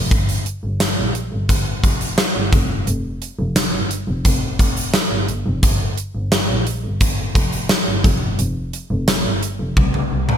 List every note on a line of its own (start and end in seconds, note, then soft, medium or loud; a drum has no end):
0.11 0.37 G1 loud
0.11 kick loud
0.11 closed hi-hat medium
0.29 closed hi-hat medium
0.46 closed hi-hat medium
0.63 0.76 G1 medium
0.80 snare loud
0.80 closed hi-hat loud
0.80 tambourine medium
0.97 1.10 A#1 medium
1.15 closed hi-hat medium
1.32 1.45 G1 medium
1.49 1.75 G1 loud
1.49 kick loud
1.49 closed hi-hat medium
1.84 2.09 F1 medium
1.84 kick loud
1.84 closed hi-hat medium
2.01 closed hi-hat medium
2.18 snare loud
2.18 closed hi-hat medium
2.18 tambourine medium
2.35 2.48 G1 medium
2.53 2.66 F1 loud
2.53 kick loud
2.53 closed hi-hat medium
2.70 2.83 G1 medium
2.87 3.13 F1 loud
2.87 closed hi-hat medium
3.22 closed hi-hat medium
3.39 3.52 F1 loud
3.56 snare loud
3.56 closed hi-hat loud
3.56 tambourine medium
3.73 3.86 G1 medium
3.91 closed hi-hat medium
4.08 4.21 F1 medium
4.25 4.51 F1 medium
4.25 kick loud
4.25 closed hi-hat medium
4.59 4.85 F1 medium
4.59 kick loud
4.59 closed hi-hat medium
4.77 closed hi-hat soft
4.94 snare loud
4.94 closed hi-hat loud
4.94 tambourine medium
5.11 5.24 G1 medium
5.28 5.41 G1 medium
5.28 closed hi-hat medium
5.46 5.59 F1 medium
5.63 5.89 G1 loud
5.63 kick loud
5.63 closed hi-hat loud
5.97 closed hi-hat medium
6.15 6.28 G1 medium
6.32 snare loud
6.32 closed hi-hat loud
6.32 tambourine medium
6.49 6.62 A#1 loud
6.67 closed hi-hat medium
6.84 6.97 G1 medium
7.01 7.27 G1 medium
7.01 kick loud
7.01 closed hi-hat medium
7.35 7.61 F1 medium
7.35 kick loud
7.35 closed hi-hat medium
7.53 closed hi-hat soft
7.69 snare loud
7.69 closed hi-hat medium
7.69 tambourine medium
7.87 8.00 G1 medium
8.04 8.17 F1 loud
8.04 kick loud
8.04 closed hi-hat medium
8.22 8.35 G1 medium
8.39 8.65 F1 loud
8.39 closed hi-hat loud
8.73 closed hi-hat medium
8.91 9.03 F1 loud
9.08 snare loud
9.08 closed hi-hat loud
9.08 tambourine medium
9.25 9.38 G1 medium
9.43 closed hi-hat medium
9.60 9.72 F1 medium
9.77 10.03 C2 loud
9.77 kick loud
9.77 high tom medium
9.94 high tom medium
10.11 10.37 C2 medium
10.29 mid tom medium